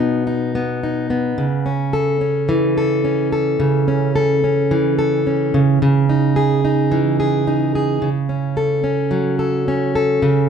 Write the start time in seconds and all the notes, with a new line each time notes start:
Already playing: B2 D#4
0.00 B3
0.27 D#4
0.55 B3
0.83 D#4
1.10 B3
1.38 C#3
1.66 C#4
1.93 A4
2.21 C#4
2.49 E3
2.78 A4
3.05 C#4
3.32 A4
3.60 C#3
3.88 C#4
4.16 A4
4.44 C#4
4.71 E3
4.99 A4
5.27 C#4
5.54 C#3
5.82 C#3
6.09 D#4
6.36 G#4
6.65 D#4
6.92 E3
7.20 G#4
7.47 D#4
7.75 G#4
8.02 C#3
8.29 C#4
8.57 A4
8.84 C#4
9.11 F#3
9.39 A4
9.68 C#4
9.95 A4
10.22 C#3